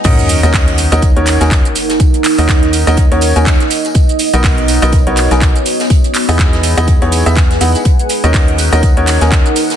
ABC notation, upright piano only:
X:1
M:4/4
L:1/16
Q:"Swing 16ths" 1/4=123
K:Ebphr
V:1 name="Upright piano"
[DEGBe]3 [DEGBe]4 [DEGBe] z [DEGBd]2 [DEGBa]2 z3 | z3 [DEGBe]4 [DEGBe] z [DEGBd]2 [DEGBa]2 z3 | z3 [=B,^D^F^A^d]4 [B,DFAd] z [B,DFA_d]2 [B,^DFA_a]2 z3 | z3 [=B,^D=E^G^d]4 [B,DEGd] z [B,DEG_d]2 [B,^DEG=e] z2 [B,DEG_g] z |
z3 [DEGBe]4 [DEGBe] z [DEGBd]2 [DEGBa]2 z3 |]